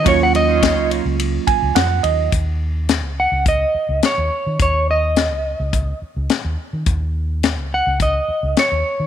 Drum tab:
RD |xxxxxxxx|--------|--------|--------|
HH |--------|x-x-x-x-|x-x-x-x-|x-x-x-x-|
SD |--o---o-|--o---o-|--o---o-|--o---o-|
BD |o-o--o--|o---o---|o---o---|o---o---|